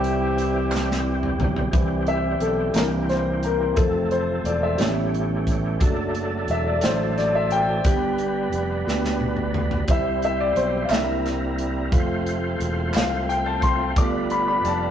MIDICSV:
0, 0, Header, 1, 6, 480
1, 0, Start_track
1, 0, Key_signature, 0, "major"
1, 0, Tempo, 679502
1, 1226, Time_signature, 6, 3, 24, 8
1, 10530, End_track
2, 0, Start_track
2, 0, Title_t, "Grand piano"
2, 0, Program_c, 0, 0
2, 0, Control_c, 0, 64, 127
2, 0, Note_on_c, 0, 48, 48
2, 0, Note_on_c, 0, 60, 54
2, 0, Note_on_c, 0, 64, 46
2, 0, Note_on_c, 0, 67, 63
2, 477, Note_off_c, 0, 48, 0
2, 1193, Note_off_c, 0, 60, 0
2, 1197, Note_off_c, 0, 64, 0
2, 1203, Note_off_c, 0, 67, 0
2, 1220, Note_on_c, 0, 52, 44
2, 1223, Note_on_c, 0, 55, 38
2, 1230, Note_on_c, 0, 60, 46
2, 1235, Control_c, 0, 64, 0
2, 1349, Control_c, 0, 64, 127
2, 1469, Note_on_c, 0, 76, 79
2, 1523, Note_off_c, 0, 76, 0
2, 1703, Note_on_c, 0, 69, 69
2, 1914, Note_off_c, 0, 52, 0
2, 1916, Note_off_c, 0, 55, 0
2, 1919, Note_off_c, 0, 60, 0
2, 1940, Note_on_c, 0, 52, 46
2, 1941, Note_on_c, 0, 58, 43
2, 1945, Note_on_c, 0, 70, 77
2, 1950, Note_on_c, 0, 62, 49
2, 1952, Note_off_c, 0, 69, 0
2, 1954, Control_c, 0, 64, 0
2, 1999, Note_off_c, 0, 70, 0
2, 2089, Control_c, 0, 64, 127
2, 2186, Note_on_c, 0, 72, 80
2, 2432, Note_on_c, 0, 70, 73
2, 2433, Note_off_c, 0, 72, 0
2, 2634, Note_off_c, 0, 52, 0
2, 2634, Note_off_c, 0, 58, 0
2, 2639, Note_off_c, 0, 62, 0
2, 2658, Note_on_c, 0, 53, 43
2, 2664, Note_on_c, 0, 69, 71
2, 2665, Note_on_c, 0, 57, 39
2, 2667, Note_on_c, 0, 60, 48
2, 2674, Control_c, 0, 64, 0
2, 2675, Note_off_c, 0, 70, 0
2, 2789, Control_c, 0, 64, 127
2, 2888, Note_off_c, 0, 69, 0
2, 2908, Note_on_c, 0, 72, 75
2, 3148, Note_on_c, 0, 74, 67
2, 3153, Note_off_c, 0, 72, 0
2, 3258, Note_off_c, 0, 74, 0
2, 3270, Note_on_c, 0, 76, 69
2, 3353, Note_off_c, 0, 53, 0
2, 3356, Note_off_c, 0, 57, 0
2, 3357, Note_off_c, 0, 60, 0
2, 3374, Note_on_c, 0, 55, 43
2, 3378, Note_on_c, 0, 59, 44
2, 3384, Note_on_c, 0, 61, 55
2, 3395, Control_c, 0, 64, 0
2, 3534, Control_c, 0, 64, 127
2, 3698, Note_off_c, 0, 55, 0
2, 3700, Note_off_c, 0, 59, 0
2, 3703, Note_off_c, 0, 61, 0
2, 3958, Note_off_c, 0, 76, 0
2, 4102, Note_on_c, 0, 54, 49
2, 4107, Note_on_c, 0, 57, 43
2, 4109, Note_on_c, 0, 62, 44
2, 4112, Control_c, 0, 64, 0
2, 4224, Control_c, 0, 64, 127
2, 4598, Note_on_c, 0, 76, 72
2, 4703, Note_off_c, 0, 76, 0
2, 4715, Note_on_c, 0, 74, 64
2, 4814, Note_off_c, 0, 54, 0
2, 4818, Note_off_c, 0, 57, 0
2, 4819, Note_off_c, 0, 62, 0
2, 4821, Note_off_c, 0, 74, 0
2, 4825, Note_on_c, 0, 54, 45
2, 4828, Note_on_c, 0, 57, 38
2, 4830, Note_on_c, 0, 62, 46
2, 4833, Note_on_c, 0, 72, 77
2, 5040, Note_off_c, 0, 54, 0
2, 5042, Note_off_c, 0, 57, 0
2, 5043, Note_off_c, 0, 62, 0
2, 5052, Note_off_c, 0, 72, 0
2, 5073, Note_on_c, 0, 74, 79
2, 5192, Note_off_c, 0, 74, 0
2, 5194, Note_on_c, 0, 76, 82
2, 5301, Note_off_c, 0, 76, 0
2, 5313, Note_on_c, 0, 79, 103
2, 5551, Control_c, 0, 64, 0
2, 5551, Note_on_c, 0, 55, 49
2, 5554, Note_on_c, 0, 59, 41
2, 5560, Note_on_c, 0, 62, 52
2, 5678, Control_c, 0, 64, 127
2, 5867, Note_off_c, 0, 55, 0
2, 5868, Note_off_c, 0, 59, 0
2, 5871, Note_off_c, 0, 62, 0
2, 6270, Note_on_c, 0, 55, 39
2, 6273, Note_on_c, 0, 59, 38
2, 6273, Note_on_c, 0, 62, 46
2, 6480, Note_off_c, 0, 79, 0
2, 6483, Note_off_c, 0, 55, 0
2, 6485, Note_off_c, 0, 59, 0
2, 6485, Note_off_c, 0, 62, 0
2, 6989, Note_on_c, 0, 55, 47
2, 6990, Note_on_c, 0, 60, 45
2, 6992, Control_c, 0, 64, 0
2, 6996, Note_on_c, 0, 64, 46
2, 6999, Note_on_c, 0, 76, 88
2, 7103, Control_c, 0, 64, 127
2, 7229, Note_off_c, 0, 76, 0
2, 7239, Note_on_c, 0, 76, 88
2, 7306, Note_off_c, 0, 55, 0
2, 7307, Note_off_c, 0, 60, 0
2, 7309, Note_off_c, 0, 64, 0
2, 7349, Note_on_c, 0, 74, 84
2, 7355, Note_off_c, 0, 76, 0
2, 7465, Note_on_c, 0, 72, 72
2, 7470, Note_off_c, 0, 74, 0
2, 7642, Note_off_c, 0, 72, 0
2, 7655, Note_on_c, 0, 77, 58
2, 7703, Note_on_c, 0, 58, 45
2, 7704, Note_off_c, 0, 77, 0
2, 7705, Note_on_c, 0, 62, 45
2, 7707, Note_on_c, 0, 76, 79
2, 7709, Note_on_c, 0, 64, 49
2, 7713, Control_c, 0, 64, 0
2, 7825, Control_c, 0, 64, 127
2, 8396, Note_off_c, 0, 58, 0
2, 8397, Note_off_c, 0, 62, 0
2, 8399, Note_off_c, 0, 64, 0
2, 8420, Note_on_c, 0, 57, 41
2, 8423, Note_on_c, 0, 60, 41
2, 8429, Note_on_c, 0, 65, 52
2, 8432, Control_c, 0, 64, 0
2, 8575, Control_c, 0, 64, 127
2, 8878, Note_off_c, 0, 76, 0
2, 9115, Note_off_c, 0, 57, 0
2, 9116, Note_off_c, 0, 60, 0
2, 9119, Note_off_c, 0, 65, 0
2, 9148, Note_on_c, 0, 77, 79
2, 9389, Note_on_c, 0, 79, 87
2, 9394, Note_off_c, 0, 77, 0
2, 9508, Note_on_c, 0, 81, 83
2, 9511, Note_off_c, 0, 79, 0
2, 9543, Note_off_c, 0, 81, 0
2, 9629, Note_on_c, 0, 84, 92
2, 9851, Note_off_c, 0, 84, 0
2, 9870, Note_on_c, 0, 57, 41
2, 9874, Note_on_c, 0, 59, 42
2, 9875, Note_on_c, 0, 86, 81
2, 9876, Control_c, 0, 64, 0
2, 9879, Note_on_c, 0, 65, 48
2, 9988, Control_c, 0, 64, 127
2, 10112, Note_on_c, 0, 83, 81
2, 10118, Note_off_c, 0, 86, 0
2, 10219, Note_off_c, 0, 83, 0
2, 10230, Note_on_c, 0, 83, 80
2, 10265, Note_off_c, 0, 83, 0
2, 10352, Note_on_c, 0, 81, 80
2, 10530, Note_off_c, 0, 57, 0
2, 10530, Note_off_c, 0, 59, 0
2, 10530, Note_off_c, 0, 65, 0
2, 10530, Note_off_c, 0, 81, 0
2, 10530, End_track
3, 0, Start_track
3, 0, Title_t, "Horn section"
3, 0, Program_c, 1, 61
3, 0, Note_on_c, 1, 60, 58
3, 0, Note_on_c, 1, 64, 55
3, 0, Note_on_c, 1, 67, 74
3, 966, Note_off_c, 1, 64, 0
3, 967, Note_off_c, 1, 60, 0
3, 996, Note_off_c, 1, 67, 0
3, 10530, End_track
4, 0, Start_track
4, 0, Title_t, "Tonewheel organ"
4, 0, Program_c, 2, 16
4, 0, Note_on_c, 2, 52, 60
4, 0, Note_on_c, 2, 55, 52
4, 0, Note_on_c, 2, 60, 50
4, 0, Note_on_c, 2, 67, 65
4, 1191, Note_off_c, 2, 55, 0
4, 1193, Note_off_c, 2, 60, 0
4, 1195, Note_off_c, 2, 52, 0
4, 1196, Note_off_c, 2, 67, 0
4, 1208, Note_on_c, 2, 55, 59
4, 1208, Note_on_c, 2, 67, 67
4, 1211, Note_on_c, 2, 52, 62
4, 1213, Note_on_c, 2, 60, 59
4, 1922, Note_off_c, 2, 67, 0
4, 1924, Note_off_c, 2, 60, 0
4, 1926, Note_off_c, 2, 52, 0
4, 1930, Note_on_c, 2, 67, 62
4, 1932, Note_on_c, 2, 60, 53
4, 1934, Note_on_c, 2, 58, 51
4, 1935, Note_on_c, 2, 52, 53
4, 1936, Note_off_c, 2, 55, 0
4, 2652, Note_off_c, 2, 60, 0
4, 2657, Note_off_c, 2, 67, 0
4, 2657, Note_on_c, 2, 69, 58
4, 2659, Note_off_c, 2, 58, 0
4, 2659, Note_on_c, 2, 57, 51
4, 2660, Note_off_c, 2, 52, 0
4, 2661, Note_on_c, 2, 60, 51
4, 2664, Note_on_c, 2, 53, 58
4, 3373, Note_off_c, 2, 57, 0
4, 3380, Note_off_c, 2, 69, 0
4, 3381, Note_on_c, 2, 57, 56
4, 3381, Note_on_c, 2, 61, 51
4, 3382, Note_off_c, 2, 60, 0
4, 3384, Note_off_c, 2, 53, 0
4, 3385, Note_on_c, 2, 52, 60
4, 3385, Note_on_c, 2, 67, 65
4, 4088, Note_off_c, 2, 57, 0
4, 4096, Note_on_c, 2, 62, 62
4, 4096, Note_on_c, 2, 69, 77
4, 4097, Note_on_c, 2, 57, 66
4, 4098, Note_on_c, 2, 54, 66
4, 4102, Note_off_c, 2, 61, 0
4, 4104, Note_off_c, 2, 52, 0
4, 4104, Note_off_c, 2, 67, 0
4, 5511, Note_off_c, 2, 57, 0
4, 5511, Note_off_c, 2, 62, 0
4, 5511, Note_off_c, 2, 69, 0
4, 5512, Note_off_c, 2, 54, 0
4, 5539, Note_on_c, 2, 62, 49
4, 5541, Note_on_c, 2, 55, 59
4, 5544, Note_on_c, 2, 71, 62
4, 5546, Note_on_c, 2, 59, 47
4, 6953, Note_off_c, 2, 62, 0
4, 6954, Note_off_c, 2, 55, 0
4, 6955, Note_off_c, 2, 71, 0
4, 6956, Note_off_c, 2, 59, 0
4, 6977, Note_on_c, 2, 60, 55
4, 6978, Note_on_c, 2, 55, 56
4, 6979, Note_on_c, 2, 64, 51
4, 6981, Note_on_c, 2, 72, 60
4, 7701, Note_off_c, 2, 55, 0
4, 7701, Note_off_c, 2, 60, 0
4, 7702, Note_off_c, 2, 64, 0
4, 7703, Note_off_c, 2, 72, 0
4, 7709, Note_on_c, 2, 70, 67
4, 7710, Note_on_c, 2, 55, 60
4, 7712, Note_on_c, 2, 64, 56
4, 7714, Note_on_c, 2, 60, 55
4, 8420, Note_off_c, 2, 60, 0
4, 8424, Note_on_c, 2, 65, 60
4, 8427, Note_off_c, 2, 70, 0
4, 8427, Note_on_c, 2, 57, 75
4, 8428, Note_off_c, 2, 55, 0
4, 8428, Note_off_c, 2, 64, 0
4, 8428, Note_on_c, 2, 71, 62
4, 8429, Note_on_c, 2, 60, 63
4, 8473, Note_off_c, 2, 71, 0
4, 8475, Note_on_c, 2, 72, 78
4, 9838, Note_off_c, 2, 65, 0
4, 9840, Note_off_c, 2, 57, 0
4, 9840, Note_off_c, 2, 60, 0
4, 9863, Note_on_c, 2, 55, 63
4, 9864, Note_off_c, 2, 72, 0
4, 9864, Note_on_c, 2, 62, 54
4, 9866, Note_on_c, 2, 70, 53
4, 9868, Note_on_c, 2, 65, 54
4, 9907, Note_on_c, 2, 71, 70
4, 9912, Note_off_c, 2, 70, 0
4, 10530, Note_off_c, 2, 55, 0
4, 10530, Note_off_c, 2, 62, 0
4, 10530, Note_off_c, 2, 65, 0
4, 10530, Note_off_c, 2, 71, 0
4, 10530, End_track
5, 0, Start_track
5, 0, Title_t, "Fingered electric bass"
5, 0, Program_c, 3, 33
5, 0, Note_on_c, 3, 36, 88
5, 958, Note_off_c, 3, 36, 0
5, 982, Note_on_c, 3, 35, 85
5, 1204, Note_off_c, 3, 35, 0
5, 1222, Note_on_c, 3, 36, 80
5, 1676, Note_off_c, 3, 36, 0
5, 1695, Note_on_c, 3, 35, 75
5, 1921, Note_off_c, 3, 35, 0
5, 1939, Note_on_c, 3, 36, 97
5, 2633, Note_off_c, 3, 36, 0
5, 2664, Note_on_c, 3, 29, 79
5, 3116, Note_off_c, 3, 29, 0
5, 3137, Note_on_c, 3, 28, 81
5, 3361, Note_off_c, 3, 28, 0
5, 3374, Note_on_c, 3, 33, 94
5, 4071, Note_off_c, 3, 33, 0
5, 4102, Note_on_c, 3, 30, 81
5, 4555, Note_off_c, 3, 30, 0
5, 4575, Note_on_c, 3, 28, 85
5, 4800, Note_off_c, 3, 28, 0
5, 4812, Note_on_c, 3, 33, 86
5, 5509, Note_off_c, 3, 33, 0
5, 5542, Note_on_c, 3, 31, 90
5, 5994, Note_off_c, 3, 31, 0
5, 6017, Note_on_c, 3, 29, 83
5, 6241, Note_off_c, 3, 29, 0
5, 6258, Note_on_c, 3, 38, 81
5, 6953, Note_off_c, 3, 38, 0
5, 6978, Note_on_c, 3, 36, 86
5, 7433, Note_off_c, 3, 36, 0
5, 7458, Note_on_c, 3, 35, 86
5, 7682, Note_off_c, 3, 35, 0
5, 7695, Note_on_c, 3, 36, 93
5, 8392, Note_off_c, 3, 36, 0
5, 8417, Note_on_c, 3, 29, 86
5, 8873, Note_off_c, 3, 29, 0
5, 8899, Note_on_c, 3, 28, 94
5, 9123, Note_off_c, 3, 28, 0
5, 9137, Note_on_c, 3, 36, 83
5, 9834, Note_off_c, 3, 36, 0
5, 9864, Note_on_c, 3, 31, 88
5, 10318, Note_off_c, 3, 31, 0
5, 10344, Note_on_c, 3, 29, 89
5, 10530, Note_off_c, 3, 29, 0
5, 10530, End_track
6, 0, Start_track
6, 0, Title_t, "Drums"
6, 28, Note_on_c, 9, 42, 52
6, 99, Note_off_c, 9, 42, 0
6, 270, Note_on_c, 9, 42, 64
6, 340, Note_off_c, 9, 42, 0
6, 505, Note_on_c, 9, 39, 74
6, 528, Note_on_c, 9, 38, 50
6, 576, Note_off_c, 9, 39, 0
6, 599, Note_off_c, 9, 38, 0
6, 645, Note_on_c, 9, 38, 48
6, 716, Note_off_c, 9, 38, 0
6, 869, Note_on_c, 9, 45, 57
6, 940, Note_off_c, 9, 45, 0
6, 987, Note_on_c, 9, 43, 87
6, 1058, Note_off_c, 9, 43, 0
6, 1105, Note_on_c, 9, 43, 74
6, 1176, Note_off_c, 9, 43, 0
6, 1223, Note_on_c, 9, 42, 76
6, 1224, Note_on_c, 9, 36, 104
6, 1293, Note_off_c, 9, 42, 0
6, 1295, Note_off_c, 9, 36, 0
6, 1459, Note_on_c, 9, 42, 45
6, 1530, Note_off_c, 9, 42, 0
6, 1699, Note_on_c, 9, 42, 56
6, 1769, Note_off_c, 9, 42, 0
6, 1935, Note_on_c, 9, 42, 74
6, 1953, Note_on_c, 9, 38, 88
6, 2006, Note_off_c, 9, 42, 0
6, 2024, Note_off_c, 9, 38, 0
6, 2186, Note_on_c, 9, 42, 40
6, 2192, Note_on_c, 9, 38, 30
6, 2256, Note_off_c, 9, 42, 0
6, 2263, Note_off_c, 9, 38, 0
6, 2422, Note_on_c, 9, 42, 52
6, 2493, Note_off_c, 9, 42, 0
6, 2659, Note_on_c, 9, 42, 79
6, 2664, Note_on_c, 9, 36, 119
6, 2730, Note_off_c, 9, 42, 0
6, 2735, Note_off_c, 9, 36, 0
6, 2903, Note_on_c, 9, 42, 44
6, 2974, Note_off_c, 9, 42, 0
6, 3145, Note_on_c, 9, 42, 61
6, 3216, Note_off_c, 9, 42, 0
6, 3378, Note_on_c, 9, 42, 79
6, 3396, Note_on_c, 9, 38, 92
6, 3449, Note_off_c, 9, 42, 0
6, 3467, Note_off_c, 9, 38, 0
6, 3633, Note_on_c, 9, 42, 41
6, 3703, Note_off_c, 9, 42, 0
6, 3863, Note_on_c, 9, 36, 75
6, 3867, Note_on_c, 9, 42, 60
6, 3934, Note_off_c, 9, 36, 0
6, 3938, Note_off_c, 9, 42, 0
6, 4101, Note_on_c, 9, 42, 80
6, 4104, Note_on_c, 9, 36, 113
6, 4171, Note_off_c, 9, 42, 0
6, 4174, Note_off_c, 9, 36, 0
6, 4341, Note_on_c, 9, 42, 51
6, 4412, Note_off_c, 9, 42, 0
6, 4577, Note_on_c, 9, 42, 55
6, 4648, Note_off_c, 9, 42, 0
6, 4813, Note_on_c, 9, 42, 75
6, 4831, Note_on_c, 9, 38, 84
6, 4883, Note_off_c, 9, 42, 0
6, 4901, Note_off_c, 9, 38, 0
6, 5070, Note_on_c, 9, 42, 42
6, 5076, Note_on_c, 9, 38, 32
6, 5140, Note_off_c, 9, 42, 0
6, 5146, Note_off_c, 9, 38, 0
6, 5301, Note_on_c, 9, 42, 53
6, 5372, Note_off_c, 9, 42, 0
6, 5540, Note_on_c, 9, 42, 84
6, 5543, Note_on_c, 9, 36, 117
6, 5611, Note_off_c, 9, 42, 0
6, 5614, Note_off_c, 9, 36, 0
6, 5781, Note_on_c, 9, 42, 49
6, 5852, Note_off_c, 9, 42, 0
6, 6022, Note_on_c, 9, 42, 52
6, 6093, Note_off_c, 9, 42, 0
6, 6274, Note_on_c, 9, 38, 51
6, 6345, Note_off_c, 9, 38, 0
6, 6390, Note_on_c, 9, 38, 43
6, 6461, Note_off_c, 9, 38, 0
6, 6498, Note_on_c, 9, 48, 62
6, 6569, Note_off_c, 9, 48, 0
6, 6615, Note_on_c, 9, 47, 60
6, 6686, Note_off_c, 9, 47, 0
6, 6741, Note_on_c, 9, 45, 84
6, 6812, Note_off_c, 9, 45, 0
6, 6860, Note_on_c, 9, 43, 72
6, 6931, Note_off_c, 9, 43, 0
6, 6978, Note_on_c, 9, 42, 86
6, 6981, Note_on_c, 9, 36, 115
6, 7048, Note_off_c, 9, 42, 0
6, 7052, Note_off_c, 9, 36, 0
6, 7222, Note_on_c, 9, 42, 49
6, 7293, Note_off_c, 9, 42, 0
6, 7460, Note_on_c, 9, 42, 60
6, 7531, Note_off_c, 9, 42, 0
6, 7695, Note_on_c, 9, 39, 76
6, 7702, Note_on_c, 9, 42, 82
6, 7720, Note_on_c, 9, 38, 86
6, 7766, Note_off_c, 9, 39, 0
6, 7772, Note_off_c, 9, 42, 0
6, 7790, Note_off_c, 9, 38, 0
6, 7951, Note_on_c, 9, 42, 45
6, 7957, Note_on_c, 9, 38, 32
6, 8022, Note_off_c, 9, 42, 0
6, 8028, Note_off_c, 9, 38, 0
6, 8183, Note_on_c, 9, 42, 58
6, 8254, Note_off_c, 9, 42, 0
6, 8422, Note_on_c, 9, 36, 120
6, 8423, Note_on_c, 9, 42, 81
6, 8492, Note_off_c, 9, 36, 0
6, 8494, Note_off_c, 9, 42, 0
6, 8664, Note_on_c, 9, 42, 53
6, 8734, Note_off_c, 9, 42, 0
6, 8904, Note_on_c, 9, 42, 60
6, 8975, Note_off_c, 9, 42, 0
6, 9137, Note_on_c, 9, 39, 80
6, 9142, Note_on_c, 9, 42, 74
6, 9160, Note_on_c, 9, 38, 90
6, 9208, Note_off_c, 9, 39, 0
6, 9212, Note_off_c, 9, 42, 0
6, 9230, Note_off_c, 9, 38, 0
6, 9393, Note_on_c, 9, 42, 45
6, 9464, Note_off_c, 9, 42, 0
6, 9623, Note_on_c, 9, 36, 84
6, 9625, Note_on_c, 9, 42, 62
6, 9693, Note_off_c, 9, 36, 0
6, 9696, Note_off_c, 9, 42, 0
6, 9864, Note_on_c, 9, 36, 122
6, 9864, Note_on_c, 9, 42, 86
6, 9934, Note_off_c, 9, 42, 0
6, 9935, Note_off_c, 9, 36, 0
6, 10102, Note_on_c, 9, 42, 52
6, 10173, Note_off_c, 9, 42, 0
6, 10346, Note_on_c, 9, 42, 58
6, 10417, Note_off_c, 9, 42, 0
6, 10530, End_track
0, 0, End_of_file